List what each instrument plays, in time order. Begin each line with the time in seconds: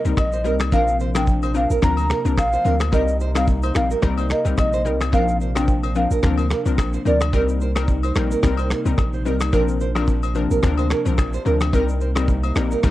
Already playing: analog synth pad C3 A#3 D#4
0.05 sub bass C2, synth pluck G3 C4 D#4 A#4, shaker
0.17 sub bass A#1, flute D#5, finger snap, kick, cross-stick, high agogo, shaker
0.32 nylon-string guitar C5, shaker
0.44 sub bass C2, synth pluck G3 C4 D#4 A#4, nylon-string guitar A#4, shaker
0.60 finger snap, cross-stick, high agogo, shaker
0.72 sub bass A#1, synth pluck F3 C4 D4 A#4, analog synth pad D4, nylon-string guitar A#4, flute F5, kick, shaker
0.88 shaker
1.00 nylon-string guitar C5, shaker
1.15 synth pluck F3 C4 D4 A#4, flute G5, finger snap, cross-stick, high agogo, shaker
1.27 kick, shaker
1.43 nylon-string guitar C5, high agogo, shaker
1.54 synth pluck F3 C4 D4 A#4, flute F5, shaker
1.70 sub bass A#1, nylon-string guitar A#4, shaker
1.82 sub bass D2, synth pluck F3 C4 D4 A#4, flute A#5, finger snap, kick, cross-stick, shaker
1.97 nylon-string guitar C5, high agogo, shaker
2.10 nylon-string guitar A#4, finger snap, cross-stick, shaker
2.25 sub bass C2, synth pluck F3 C4 D4 A#4, shaker
2.38 sub bass A#1, flute F5, finger snap, kick, cross-stick, high agogo, shaker
2.53 nylon-string guitar C5, shaker
2.65 sub bass D2, synth pluck F3 C4 D4 A#4, nylon-string guitar A#4, shaker
2.80 finger snap, cross-stick, high agogo, shaker
2.92 sub bass C2, synth pluck G3 C4 D#4 A#4, analog synth pad D#4, nylon-string guitar A#4, flute D#5, kick, shaker
3.08 shaker
3.20 nylon-string guitar C5, shaker
3.35 synth pluck G3 C4 D#4 A#4, flute F5, finger snap, cross-stick, high agogo, shaker
3.47 kick, shaker
3.63 nylon-string guitar C5, high agogo, shaker
3.75 sub bass A#1, synth pluck G3 C4 D#4 A#4, flute F5, finger snap, cross-stick, shaker
3.91 nylon-string guitar A#4, shaker
4.02 sub bass C2, synth pluck G3 C4 D#4 A#4, finger snap, kick, cross-stick, shaker
4.18 nylon-string guitar C5, high agogo, shaker
4.30 nylon-string guitar A#4, flute D#5, finger snap, cross-stick, shaker
4.45 sub bass C2, synth pluck G3 C4 D#4 A#4, shaker
4.58 sub bass A#1, flute D#5, finger snap, kick, cross-stick, high agogo, shaker
4.73 nylon-string guitar C5, shaker
4.85 sub bass C2, synth pluck G3 C4 D#4 A#4, nylon-string guitar A#4, shaker
5.00 finger snap, cross-stick, high agogo, shaker
5.12 sub bass A#1, synth pluck F3 C4 D4 A#4, analog synth pad D4, nylon-string guitar A#4, flute F5, kick, shaker
5.28 shaker
5.41 nylon-string guitar C5, shaker
5.55 synth pluck F3 C4 D4 A#4, flute G5, finger snap, cross-stick, high agogo, shaker
5.68 kick, shaker
5.83 nylon-string guitar C5, high agogo, shaker
5.95 synth pluck F3 C4 D4 A#4, flute F5, shaker
6.11 sub bass A#1, nylon-string guitar A#4, shaker
6.23 sub bass D2, synth pluck F3 C4 D4 A#4, finger snap, kick, cross-stick, shaker
6.38 nylon-string guitar C5, high agogo, shaker
6.50 nylon-string guitar A#4, finger snap, cross-stick, shaker
6.65 sub bass C2, synth pluck F3 C4 D4 A#4, shaker
6.78 sub bass A#1, finger snap, kick, cross-stick, high agogo, shaker
6.93 nylon-string guitar C5, shaker
7.05 sub bass D2, synth pluck F3 C4 D4 A#4, nylon-string guitar A#4, flute D5, shaker
7.20 finger snap, cross-stick, high agogo, shaker
7.33 sub bass C2, analog synth pad C3 D#4, synth pluck G3 C4 D#4 A#4, nylon-string guitar A#4, kick, shaker
7.48 shaker
7.61 nylon-string guitar C5, shaker
7.75 synth pluck G3 C4 D#4 A#4, finger snap, cross-stick, high agogo, shaker
7.88 kick, shaker
8.03 nylon-string guitar C5, high agogo, shaker
8.15 sub bass A#1, synth pluck G3 C4 D#4 A#4, finger snap, cross-stick, shaker
8.31 nylon-string guitar A#4, shaker
8.43 sub bass C2, synth pluck G3 C4 D#4 A#4, finger snap, kick, cross-stick, shaker
8.57 nylon-string guitar C5, high agogo, shaker
8.70 nylon-string guitar A#4, finger snap, cross-stick, shaker
8.85 sub bass C2, synth pluck G3 C4 D#4 A#4, shaker
8.98 sub bass A#1, finger snap, kick, cross-stick, high agogo, shaker
9.13 nylon-string guitar C5, shaker
9.25 sub bass C2, synth pluck G3 C4 D#4 A#4, nylon-string guitar A#4, shaker
9.40 finger snap, cross-stick, high agogo, shaker
9.53 sub bass A#1, synth pluck F3 C4 D4 A#4, analog synth pad D4, nylon-string guitar A#4, kick, shaker
9.68 shaker
9.80 nylon-string guitar C5, shaker
9.95 synth pluck F3 C4 D4 A#4, finger snap, cross-stick, high agogo, shaker
10.08 kick, shaker
10.23 nylon-string guitar C5, high agogo, shaker
10.35 synth pluck F3 C4 D4 A#4, shaker
10.51 sub bass A#1, nylon-string guitar A#4, shaker
10.63 sub bass D2, synth pluck F3 C4 D4 A#4, finger snap, kick, cross-stick, shaker
10.78 nylon-string guitar C5, high agogo, shaker
10.90 nylon-string guitar A#4, finger snap, cross-stick, shaker
11.05 sub bass C2, synth pluck F3 C4 D4 A#4, shaker
11.18 sub bass A#1, finger snap, kick, cross-stick, high agogo, shaker
11.33 nylon-string guitar C5, shaker
11.45 sub bass D2, synth pluck F3 C4 D4 A#4, nylon-string guitar A#4, shaker
11.61 finger snap, cross-stick, high agogo, shaker
11.73 sub bass C2, synth pluck G3 C4 D#4 A#4, analog synth pad A#3 D#4, nylon-string guitar A#4, kick, shaker
11.89 shaker
12.01 nylon-string guitar C5, shaker
12.15 synth pluck G3 C4 D#4 A#4, finger snap, cross-stick, high agogo, shaker
12.28 kick, shaker
12.43 nylon-string guitar C5, high agogo, shaker
12.55 sub bass A#1, synth pluck G3 C4 D#4 A#4, finger snap, cross-stick, shaker
12.71 nylon-string guitar A#4, shaker
12.83 sub bass C2, synth pluck G3 C4 D#4 A#4, finger snap, kick, cross-stick, shaker